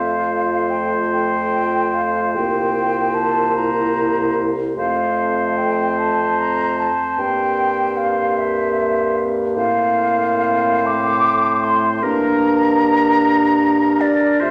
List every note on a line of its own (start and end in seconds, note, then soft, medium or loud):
0.00 2.37 F2 soft
0.00 2.38 A3 soft
0.00 3.54 F4 soft
0.00 4.61 C5 soft
0.00 0.71 F5 soft
0.70 0.93 G5 soft
1.13 1.95 G5 medium
1.94 2.35 F5 soft
2.35 4.76 C2 soft
2.35 4.60 A#3 soft
2.35 3.16 G5 medium
3.14 3.55 A5 medium
3.53 4.60 E4 soft
3.53 4.35 A#5 soft
4.77 6.87 F2 soft
4.77 6.87 A3 soft
4.77 9.24 C4 soft
4.77 9.24 C5 soft
4.77 5.59 F5 medium
5.57 5.99 G5 medium
5.98 6.40 A5 medium
6.38 6.78 A#5 medium
6.79 7.20 A5 medium
7.18 9.58 G2 soft
7.18 10.85 A#3 soft
7.18 7.98 G5 medium
7.97 8.39 F5 medium
8.38 9.32 E5 medium
9.56 12.01 A2 medium
9.56 12.04 C4 soft
9.56 12.05 C5 medium
9.56 10.87 F5 medium
10.83 12.05 A3 soft
10.83 11.65 D6 medium
11.63 12.06 C6 medium
12.02 14.09 G2 medium
12.02 14.14 A#3 medium
12.02 14.42 D4 medium
12.02 14.42 A#4 medium
12.02 14.02 A#5 medium
14.01 14.40 D5 medium
14.40 14.51 C3 medium
14.40 14.51 A3 medium
14.40 14.51 F4 medium
14.40 14.51 C5 medium
14.40 14.51 E5 medium